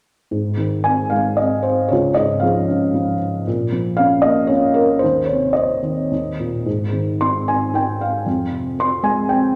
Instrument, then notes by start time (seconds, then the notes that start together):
felt piano
0.31 G#2
0.57 D#3
0.84 C4 G#5
1.10 G#3 F5
1.37 C4 D#5
1.63 C5
1.89 C#2 C#5
1.93 F4
2.14 G#2 D#5
2.40 F3 F5
2.44 G#4
2.70 C#3
2.94 F3
3.47 A#2
3.72 F3
3.97 C#4 F5
4.22 A#3 D#5
4.47 C#4 C#5
4.74 A#4
4.99 D#4 C5
5.04 D#2
5.26 C#5
5.31 C3
5.53 C4 C5 D#5
5.82 D#3
6.11 D#2
6.40 A#2
6.66 G#2
6.92 D#3
7.21 D#4 C6
7.47 C4 G#5
7.74 D#4 G5
8.01 F5
8.26 F2
8.50 C3
8.79 C4 C6
9.03 G#3 G#5
9.29 C4 G5